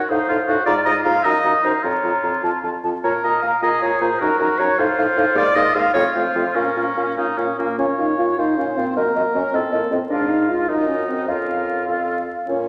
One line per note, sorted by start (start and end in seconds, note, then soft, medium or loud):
0.00 0.11 F#4 medium
0.09 0.19 A2 medium
0.09 0.18 D#4 medium
0.09 0.28 D#4 medium
0.09 0.65 C5 medium
0.09 0.17 F5 medium
0.29 0.38 A2 medium
0.29 0.37 D#4 medium
0.29 0.37 F4 medium
0.29 0.35 F5 medium
0.48 0.57 A2 medium
0.48 0.56 D#4 medium
0.48 0.65 F#4 medium
0.48 0.55 F5 medium
0.66 0.76 G#2 medium
0.66 0.75 F4 medium
0.66 1.25 F4 medium
0.66 0.75 D5 loud
0.66 0.73 A#5 medium
0.85 0.95 G#2 medium
0.85 0.94 F4 medium
0.85 0.94 D#5 loud
0.85 0.91 A#5 medium
1.04 1.14 G#2 medium
1.04 1.13 F4 medium
1.04 1.25 F5 loud
1.04 1.11 A#5 medium
1.23 1.33 F#2 medium
1.23 1.85 D#4 medium
1.23 1.34 D#4 medium
1.23 1.64 D#5 loud
1.23 1.31 A#5 medium
1.44 1.53 F#2 medium
1.44 1.53 D#4 medium
1.44 1.51 A#5 medium
1.64 1.73 F#2 medium
1.64 1.73 D#4 medium
1.64 1.73 C5 medium
1.64 1.71 A#5 medium
1.83 1.93 F2 medium
1.83 2.74 F4 medium
1.83 1.93 F4 medium
1.83 2.43 C#5 medium
1.83 1.91 A#5 medium
2.03 2.12 F2 medium
2.03 2.13 F4 soft
2.03 2.10 A#5 medium
2.23 2.32 F2 medium
2.23 2.33 F4 soft
2.23 2.29 A#5 soft
2.43 2.52 F2 medium
2.43 2.52 F4 soft
2.43 2.50 A5 medium
2.63 2.73 F2 medium
2.63 2.73 F4 soft
2.63 2.69 A5 soft
2.84 2.93 F2 medium
2.84 2.93 F4 soft
2.84 2.90 A5 soft
3.04 3.13 A#2 medium
3.04 3.13 F4 medium
3.04 3.59 A#4 medium
3.04 3.13 C#5 medium
3.04 3.10 A#5 medium
3.24 3.33 A#2 medium
3.24 3.33 F4 soft
3.24 3.42 D#5 medium
3.24 3.30 A#5 medium
3.43 3.52 A#2 medium
3.43 3.52 F4 soft
3.43 3.52 F5 medium
3.43 3.49 A#5 soft
3.62 3.72 A#2 medium
3.62 3.72 F4 medium
3.62 4.20 G#4 medium
3.62 3.81 D#5 loud
3.62 3.69 A#5 medium
3.82 3.91 A#2 medium
3.82 3.92 F4 medium
3.82 4.02 C#5 medium
3.82 3.89 A#5 medium
4.01 4.10 A#2 medium
4.01 4.11 F4 medium
4.01 4.21 C5 medium
4.01 4.08 A#5 medium
4.20 4.30 F#2 medium
4.20 4.30 D#4 medium
4.20 4.77 F#4 medium
4.20 4.39 A#4 medium
4.20 4.28 A#5 medium
4.39 4.48 F#2 medium
4.39 4.49 D#4 medium
4.39 4.60 A#4 medium
4.39 4.47 A#5 medium
4.59 4.68 F#2 medium
4.59 4.68 D#4 medium
4.59 4.79 C#5 loud
4.59 4.66 A#5 medium
4.78 4.87 A2 medium
4.78 4.87 D#4 medium
4.78 5.92 F4 medium
4.78 5.37 C5 loud
4.78 4.86 F5 medium
4.98 5.06 A2 medium
4.98 5.07 D#4 medium
4.98 5.05 F5 medium
5.16 5.25 A2 medium
5.16 5.25 D#4 medium
5.16 5.24 F5 medium
5.35 5.44 G#2 loud
5.35 5.44 A#3 medium
5.35 5.56 D5 loud
5.35 5.43 F5 medium
5.55 5.64 G#2 medium
5.55 5.64 A#3 medium
5.55 5.76 D#5 loud
5.55 5.63 F5 medium
5.74 5.84 G#2 medium
5.74 5.83 A#3 medium
5.74 5.93 F5 loud
5.74 5.81 F5 medium
5.94 6.04 F2 medium
5.94 6.04 A3 medium
5.94 6.57 F4 medium
5.94 6.03 C#5 loud
5.94 6.01 F5 medium
6.14 6.24 F2 medium
6.14 6.24 A3 medium
6.14 6.57 C5 medium
6.14 6.22 F5 medium
6.35 6.44 F2 medium
6.35 6.44 A3 medium
6.35 6.42 F5 medium
6.54 6.65 A#2 medium
6.54 6.64 C#4 medium
6.54 7.13 C#4 medium
6.54 7.17 A#4 medium
6.54 6.62 F5 medium
6.76 6.86 A#2 medium
6.76 6.85 C#4 medium
6.76 6.83 F5 medium
6.96 7.06 A#2 medium
6.96 7.06 C#4 soft
6.96 7.03 F5 soft
7.17 7.27 A#2 medium
7.17 7.26 C#4 soft
7.17 7.39 D#4 medium
7.17 7.24 F5 medium
7.37 7.47 A#2 medium
7.37 7.46 C#4 soft
7.37 7.58 C#4 medium
7.37 7.44 F5 soft
7.58 7.67 A#2 medium
7.58 7.78 A#3 medium
7.58 7.67 C#4 soft
7.58 7.66 F5 soft
7.78 7.87 A#2 soft
7.78 7.88 C#4 medium
7.78 7.87 F4 soft
7.78 8.40 C#5 soft
7.78 7.85 F5 soft
7.98 8.07 A#2 medium
7.98 8.17 D#4 medium
7.98 8.07 F4 soft
7.98 8.06 F5 soft
8.18 8.27 A#2 medium
8.18 8.37 F4 medium
8.18 8.27 F4 soft
8.18 8.25 F5 soft
8.38 8.47 A#2 medium
8.38 8.58 D#4 medium
8.38 8.46 F4 soft
8.38 8.96 C5 medium
8.38 8.44 F5 soft
8.57 8.66 A#2 medium
8.57 8.78 C#4 medium
8.57 8.67 F4 soft
8.57 8.65 F5 soft
8.76 8.86 A#2 medium
8.76 8.99 C4 medium
8.76 8.85 F4 soft
8.76 8.83 F5 soft
8.96 9.05 F#2 medium
8.96 9.16 A#3 medium
8.96 9.05 F#4 soft
8.96 9.56 A#4 medium
8.96 9.02 D#5 soft
9.15 9.24 F#2 medium
9.15 9.37 A#3 medium
9.15 9.24 F#4 soft
9.15 9.21 D#5 medium
9.34 9.44 F#2 medium
9.34 9.54 C#4 medium
9.34 9.43 F#4 soft
9.34 9.41 D#5 medium
9.53 9.62 A2 medium
9.53 9.74 C4 medium
9.53 9.62 F4 medium
9.53 9.94 A4 medium
9.53 9.60 D#5 medium
9.72 9.81 A2 medium
9.72 9.91 A#3 medium
9.72 9.81 F4 soft
9.72 9.78 D#5 medium
9.91 10.00 A2 medium
9.91 10.00 C4 medium
9.91 10.00 F4 soft
9.91 9.97 D#5 soft
10.10 10.65 G#2 medium
10.10 10.31 D4 medium
10.10 10.71 F4 medium
10.10 10.65 A#4 medium
10.10 10.44 F5 medium
10.30 10.51 D#4 medium
10.49 10.70 F4 medium
10.68 11.30 F#2 medium
10.68 10.90 D#4 medium
10.68 11.28 D#4 medium
10.68 11.27 A#4 medium
10.68 11.30 D#5 medium
10.88 11.07 C#4 medium
11.08 11.30 C4 medium
11.28 11.87 F2 medium
11.28 11.88 C#4 medium
11.28 12.16 F4 soft
11.28 11.87 A#4 soft
11.28 11.88 F5 soft
11.87 12.27 F2 soft
11.87 12.27 A4 soft
11.87 12.27 F5 soft
12.47 12.68 A#2 medium
12.47 12.68 C#4 medium
12.47 12.68 F4 medium
12.47 12.68 C#5 soft